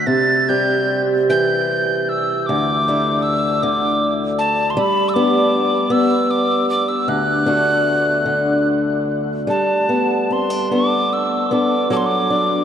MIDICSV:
0, 0, Header, 1, 3, 480
1, 0, Start_track
1, 0, Key_signature, 1, "major"
1, 0, Tempo, 802139
1, 42, Time_signature, 6, 3, 24, 8
1, 1481, Tempo, 767263
1, 4361, Tempo, 807537
1, 6761, Tempo, 782269
1, 7697, End_track
2, 0, Start_track
2, 0, Title_t, "Tin whistle"
2, 0, Program_c, 0, 75
2, 41, Note_on_c, 0, 93, 87
2, 292, Note_on_c, 0, 91, 86
2, 301, Note_off_c, 0, 93, 0
2, 613, Note_off_c, 0, 91, 0
2, 776, Note_on_c, 0, 91, 88
2, 1251, Note_on_c, 0, 88, 85
2, 1260, Note_off_c, 0, 91, 0
2, 1474, Note_on_c, 0, 86, 95
2, 1483, Note_off_c, 0, 88, 0
2, 1950, Note_on_c, 0, 88, 82
2, 1960, Note_off_c, 0, 86, 0
2, 2202, Note_on_c, 0, 86, 87
2, 2211, Note_off_c, 0, 88, 0
2, 2519, Note_off_c, 0, 86, 0
2, 2676, Note_on_c, 0, 81, 84
2, 2875, Note_on_c, 0, 84, 65
2, 2885, Note_off_c, 0, 81, 0
2, 2927, Note_on_c, 0, 83, 91
2, 2936, Note_off_c, 0, 84, 0
2, 3116, Note_on_c, 0, 88, 70
2, 3126, Note_off_c, 0, 83, 0
2, 3148, Note_on_c, 0, 86, 94
2, 3157, Note_off_c, 0, 88, 0
2, 3633, Note_on_c, 0, 88, 94
2, 3642, Note_off_c, 0, 86, 0
2, 3879, Note_on_c, 0, 86, 83
2, 3888, Note_off_c, 0, 88, 0
2, 4118, Note_off_c, 0, 86, 0
2, 4122, Note_on_c, 0, 86, 86
2, 4240, Note_on_c, 0, 88, 78
2, 4250, Note_off_c, 0, 86, 0
2, 4366, Note_on_c, 0, 90, 88
2, 4375, Note_off_c, 0, 88, 0
2, 5310, Note_off_c, 0, 90, 0
2, 5800, Note_on_c, 0, 81, 74
2, 6291, Note_on_c, 0, 84, 70
2, 6300, Note_off_c, 0, 81, 0
2, 6534, Note_on_c, 0, 86, 81
2, 6543, Note_off_c, 0, 84, 0
2, 6770, Note_on_c, 0, 88, 74
2, 6779, Note_off_c, 0, 86, 0
2, 7013, Note_on_c, 0, 86, 82
2, 7022, Note_off_c, 0, 88, 0
2, 7247, Note_off_c, 0, 86, 0
2, 7252, Note_on_c, 0, 86, 85
2, 7284, Note_on_c, 0, 84, 73
2, 7293, Note_off_c, 0, 86, 0
2, 7341, Note_on_c, 0, 86, 90
2, 7350, Note_off_c, 0, 84, 0
2, 7697, Note_off_c, 0, 86, 0
2, 7697, End_track
3, 0, Start_track
3, 0, Title_t, "Steel-string acoustic guitar"
3, 0, Program_c, 1, 25
3, 0, Note_on_c, 1, 50, 56
3, 0, Note_on_c, 1, 57, 52
3, 0, Note_on_c, 1, 62, 52
3, 0, Note_on_c, 1, 66, 59
3, 40, Note_on_c, 1, 48, 67
3, 93, Note_off_c, 1, 50, 0
3, 94, Note_off_c, 1, 57, 0
3, 96, Note_off_c, 1, 62, 0
3, 96, Note_off_c, 1, 66, 0
3, 293, Note_on_c, 1, 55, 48
3, 296, Note_on_c, 1, 67, 53
3, 300, Note_on_c, 1, 60, 51
3, 776, Note_on_c, 1, 52, 57
3, 1480, Note_off_c, 1, 48, 0
3, 1491, Note_on_c, 1, 38, 72
3, 1533, Note_off_c, 1, 55, 0
3, 1534, Note_off_c, 1, 67, 0
3, 1536, Note_off_c, 1, 60, 0
3, 1734, Note_on_c, 1, 57, 58
3, 1737, Note_on_c, 1, 62, 54
3, 1741, Note_on_c, 1, 64, 59
3, 1754, Note_off_c, 1, 52, 0
3, 2205, Note_on_c, 1, 50, 66
3, 2912, Note_off_c, 1, 50, 0
3, 2915, Note_on_c, 1, 55, 83
3, 2921, Note_off_c, 1, 38, 0
3, 2969, Note_off_c, 1, 57, 0
3, 2972, Note_off_c, 1, 64, 0
3, 3159, Note_off_c, 1, 62, 0
3, 3159, Note_on_c, 1, 59, 60
3, 3161, Note_on_c, 1, 62, 62
3, 3162, Note_on_c, 1, 67, 65
3, 3616, Note_off_c, 1, 59, 0
3, 3624, Note_on_c, 1, 59, 67
3, 4359, Note_off_c, 1, 55, 0
3, 4362, Note_on_c, 1, 38, 76
3, 4402, Note_off_c, 1, 59, 0
3, 4410, Note_off_c, 1, 67, 0
3, 4589, Note_off_c, 1, 62, 0
3, 4589, Note_on_c, 1, 62, 55
3, 4595, Note_on_c, 1, 57, 51
3, 4597, Note_on_c, 1, 66, 59
3, 5061, Note_on_c, 1, 50, 57
3, 5781, Note_off_c, 1, 50, 0
3, 5783, Note_on_c, 1, 55, 63
3, 5786, Note_off_c, 1, 66, 0
3, 5788, Note_on_c, 1, 69, 49
3, 5792, Note_off_c, 1, 38, 0
3, 6030, Note_off_c, 1, 62, 0
3, 6032, Note_on_c, 1, 59, 45
3, 6050, Note_off_c, 1, 57, 0
3, 6279, Note_on_c, 1, 60, 48
3, 6395, Note_off_c, 1, 60, 0
3, 6395, Note_on_c, 1, 62, 37
3, 6516, Note_off_c, 1, 59, 0
3, 6516, Note_off_c, 1, 62, 0
3, 6522, Note_on_c, 1, 59, 51
3, 6524, Note_off_c, 1, 69, 0
3, 6524, Note_on_c, 1, 62, 46
3, 6526, Note_on_c, 1, 69, 54
3, 6995, Note_off_c, 1, 59, 0
3, 7002, Note_on_c, 1, 59, 48
3, 7003, Note_off_c, 1, 62, 0
3, 7006, Note_on_c, 1, 62, 50
3, 7008, Note_off_c, 1, 69, 0
3, 7011, Note_on_c, 1, 69, 55
3, 7238, Note_off_c, 1, 55, 0
3, 7243, Note_on_c, 1, 54, 70
3, 7246, Note_off_c, 1, 69, 0
3, 7249, Note_on_c, 1, 69, 59
3, 7289, Note_off_c, 1, 59, 0
3, 7489, Note_off_c, 1, 62, 0
3, 7489, Note_on_c, 1, 62, 55
3, 7697, Note_off_c, 1, 54, 0
3, 7697, Note_off_c, 1, 62, 0
3, 7697, Note_off_c, 1, 69, 0
3, 7697, End_track
0, 0, End_of_file